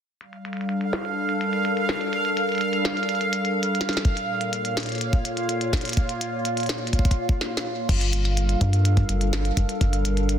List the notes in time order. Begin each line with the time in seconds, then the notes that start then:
0.21 G3 F5, closed hi-hat
0.33 closed hi-hat
0.42 A4, closed hi-hat
0.52 D4, closed hi-hat
0.57 closed hi-hat
0.61 closed hi-hat
0.69 closed hi-hat
0.81 closed hi-hat
0.93 snare, closed hi-hat
1.05 closed hi-hat
1.19 A#4
1.29 closed hi-hat
1.36 F5
1.41 closed hi-hat
1.53 closed hi-hat
1.65 closed hi-hat
1.77 closed hi-hat
1.89 snare, closed hi-hat
2.01 closed hi-hat
2.13 closed hi-hat
2.25 closed hi-hat
2.37 closed hi-hat
2.49 closed hi-hat
2.52 closed hi-hat
2.55 closed hi-hat
2.58 closed hi-hat
2.61 closed hi-hat
2.73 closed hi-hat
2.85 snare, closed hi-hat
2.97 closed hi-hat
3.03 closed hi-hat
3.09 closed hi-hat
3.15 closed hi-hat
3.21 closed hi-hat
3.33 closed hi-hat
3.45 closed hi-hat
3.63 closed hi-hat
3.75 closed hi-hat
3.81 snare, closed hi-hat
3.89 snare
3.93 closed hi-hat
3.97 snare
4.05 A#2, kick, closed hi-hat
4.17 closed hi-hat
4.29 A#3
4.41 closed hi-hat
4.52 C#5, closed hi-hat
4.63 F4, closed hi-hat
4.77 snare, closed hi-hat
4.80 closed hi-hat
4.83 closed hi-hat
4.86 closed hi-hat
4.89 closed hi-hat
4.92 closed hi-hat
4.95 closed hi-hat
4.98 closed hi-hat
5.01 closed hi-hat
5.13 kick, closed hi-hat
5.25 closed hi-hat
5.37 closed hi-hat
5.49 closed hi-hat
5.61 closed hi-hat
5.73 kick, snare, closed hi-hat
5.77 closed hi-hat
5.81 closed hi-hat
5.85 closed hi-hat
5.88 closed hi-hat
5.89 closed hi-hat
5.92 closed hi-hat
5.95 kick, closed hi-hat
5.97 closed hi-hat
6.09 closed hi-hat
6.21 closed hi-hat
6.45 closed hi-hat
6.57 closed hi-hat
6.60 closed hi-hat
6.63 closed hi-hat
6.66 snare, closed hi-hat
6.69 closed hi-hat
6.75 closed hi-hat
6.78 closed hi-hat
6.87 closed hi-hat
6.93 kick, closed hi-hat
6.99 kick
7.05 kick, closed hi-hat
7.11 kick, closed hi-hat
7.29 kick
7.41 snare
7.57 snare
7.89 G1 G3 F5, kick, closed hi-hat, crash
8.01 closed hi-hat
8.13 D4, closed hi-hat
8.21 A4 A#4
8.25 closed hi-hat
8.37 closed hi-hat
8.49 closed hi-hat
8.61 G2, kick, closed hi-hat
8.73 closed hi-hat
8.85 closed hi-hat
8.97 kick, closed hi-hat
9.09 G1, closed hi-hat
9.21 closed hi-hat
9.33 snare, closed hi-hat
9.45 closed hi-hat
9.57 G1, kick, closed hi-hat
9.69 closed hi-hat
9.81 G1, kick, closed hi-hat
9.93 closed hi-hat
10.05 closed hi-hat
10.17 closed hi-hat
10.29 closed hi-hat